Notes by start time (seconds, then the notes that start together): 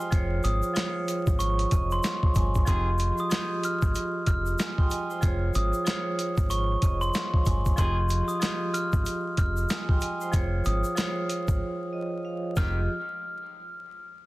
Already playing: F3 F4 G4 G#4 D#5 G#5 C6 D#6
0.00 C5 G5, shaker
0.10 F1 F3 F4 G#4 C5 C#5, kick, closed hi-hat, shaker
0.43 G#1 D#6, closed hi-hat, shaker
0.63 shaker
0.74 F3 F4 G#4 C5 C#5, snare, clap, closed hi-hat, shaker
1.08 closed hi-hat, shaker
1.27 G#1, kick, shaker
1.39 C#6, closed hi-hat, shaker
1.59 closed hi-hat
1.71 F1 D#5, kick, closed hi-hat, shaker
1.91 C6, shaker
2.03 F5, snare, clap, closed hi-hat, shaker
2.23 kick
2.35 G1 G#5, kick, closed hi-hat, shaker
2.55 kick, shaker
2.65 F1 D#3 F3 C4 F4 G4 G#4 D#5 C6, kick, closed hi-hat, shaker
2.99 closed hi-hat, shaker
3.18 D#6, shaker
3.29 F3 F4 G4 G#4 D#5, snare, clap, closed hi-hat, shaker
3.63 F6, closed hi-hat, shaker
3.82 G#1, kick, shaker
3.95 closed hi-hat, shaker
4.27 F1 F6, kick, closed hi-hat, shaker
4.46 shaker
4.59 G#5 D#6, snare, clap, closed hi-hat, shaker
4.78 G5 C6, kick
4.91 D#5 G#5, closed hi-hat, shaker
5.10 C5 G5, shaker
5.21 F1 F3 F4 G#4 C5 C#5, kick, closed hi-hat, shaker
5.54 G#1 D#6, closed hi-hat, shaker
5.73 shaker
5.84 F3 F4 G#4 C5 C#5, snare, clap, closed hi-hat, shaker
6.19 closed hi-hat, shaker
6.38 G#1, kick, shaker
6.50 C#6, closed hi-hat, shaker
6.82 F1 D#5, kick, closed hi-hat, shaker
7.01 C6, shaker
7.14 F5, snare, clap, closed hi-hat, shaker
7.34 kick
7.46 G1 G#5, kick, closed hi-hat, shaker
7.66 kick, shaker
7.76 F1 D#3 F3 C4 F4 G4 G#4 D#5 C6, kick, closed hi-hat, shaker
8.09 closed hi-hat, shaker
8.28 D#6, shaker
8.40 F3 F4 G4 G#4 D#5, snare, clap, closed hi-hat, shaker
8.74 F6, closed hi-hat, shaker
8.93 G#1, kick, shaker
9.06 closed hi-hat, shaker
9.37 F1 F6, kick, closed hi-hat, shaker
9.57 shaker
9.69 G#5 D#6, snare, clap, closed hi-hat, shaker
9.89 G5 C6, kick
10.01 D#5 G#5, closed hi-hat, shaker
10.21 C5 G5, shaker
10.32 F1 F3 F4 G#4 C5 C#5, kick, closed hi-hat, shaker
10.65 G#1 D#6, closed hi-hat, shaker
10.84 shaker
10.95 F3 F4 G#4 C5 C#5, snare, clap, closed hi-hat, shaker
11.29 closed hi-hat, shaker
11.48 G#1, kick, shaker
11.93 D#5
12.25 F5
12.57 F1 D#3 F3 C4 F4 G4 G#4 D#5 F6, kick, snare, shaker